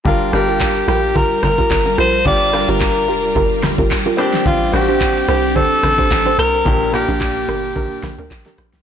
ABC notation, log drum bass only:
X:1
M:4/4
L:1/16
Q:"Swing 16ths" 1/4=109
K:Gm
V:1 name="Log drum bass" clef=bass
G,,,2 G,,,4 B,,,3 z G,,,2 G,,,2 B,,,2 | G,,,3 G,,,3 F,,,2 G,,,3 G,,, z4 | A,,,2 A,,,4 C,,3 z A,,,2 A,,,2 C,,2 | B,,,3 B,,,3 G,,,2 B,,, z B,,, D,, B,,, z B,,, C,, |]